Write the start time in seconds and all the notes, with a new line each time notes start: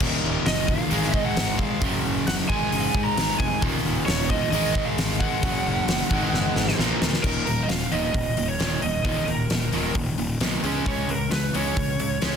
0.00 D#1 D#2 A#2 D#3, kick, crash
0.24 D#1
0.46 F#1 D#5, snare, open hi-hat
0.67 D#2 A#2 D#3 F5, kick
0.89 G#1 G#2 D#3 G#3, open hi-hat
1.03 snare
1.14 D#5, kick
1.25 F#5
1.36 G#1, snare, open hi-hat
1.57 G#2 D#3 G#3 F5, kick
1.80 F#1 F#2 C#3 F#3, kick, open hi-hat
2.05 F#1
2.27 F#1 F#5, snare, open hi-hat
2.49 G#1 G#2 D#3 G#3 G#5, kick
2.72 F#1, open hi-hat
2.95 G#2, kick
3.04 A#5
3.16 G#1 G#2 D#3 G#3, snare, open hi-hat
3.38 F1 G#5, kick
3.61 D#1 D#2 A#2 D#3, kick, open hi-hat
3.85 D#1
4.06 D#1 C#5, snare, open hi-hat
4.29 D#2 A#2 D#3 D#5, kick
4.52 G#1 G#2 D#3 G#3, open hi-hat
4.75 kick
4.85 F5
4.97 G#1, snare, open hi-hat
5.20 G#2 D#3 G#3 F#5, kick
5.42 F#1 F#2 C#3 F#3, kick, open hi-hat
5.65 F#1
5.87 F#1, snare, open hi-hat
6.09 G#1 G#2 D#3 G#3, kick
6.33 F#1, snare
6.56 G#1, snare
6.68 snare
6.77 A#1 A#2 F3 A#3, snare
7.01 D2, snare
7.13 snare
7.23 D#1 D#2 A#2 D#3 A#4, kick, crash
7.46 D#1 D#2 A#2 A#4, open hi-hat
7.63 D#5
7.68 D#1 D#2 A#2 F5, snare, open hi-hat
7.92 D#1 D#2 A#2 D#3 D#5, open hi-hat
8.14 D#1 D#2 A#2, kick, open hi-hat
8.37 D#1 D#2 A#2, open hi-hat
8.49 C#5
8.59 D#1 D#2 A#2 D#3, snare, open hi-hat
8.82 D#1 D#2 A#2 D#5, open hi-hat
9.04 D#1 D#2 A#2 D#3 D#5, kick, open hi-hat
9.27 D#1 D#2 A#2 A#4, open hi-hat
9.50 D#1 D#2 A#2, snare, open hi-hat
9.72 D#1 D#2 A#2 D#3, open hi-hat
9.95 D#1 D#2 A#2, kick, open hi-hat
10.18 D#1 D#2 A#2, open hi-hat
10.41 B1 D#2 A#2 D#3, snare, open hi-hat
10.64 C#2 C#3 G#3 C#4, open hi-hat
10.86 C#2 C#3 G#3 C#4 C#5, kick, open hi-hat
11.08 C#2 C#3 G#3 A#4, open hi-hat
11.31 C#2 C#3 G#3 B4, snare, open hi-hat
11.54 C#2 C#3 G#3 C#4 C#5, open hi-hat
11.77 C#2 C#3 G#3, kick, open hi-hat
11.99 C#2 C#3 G#3, open hi-hat
12.22 C#2 C#3 G#3 C#4, snare, open hi-hat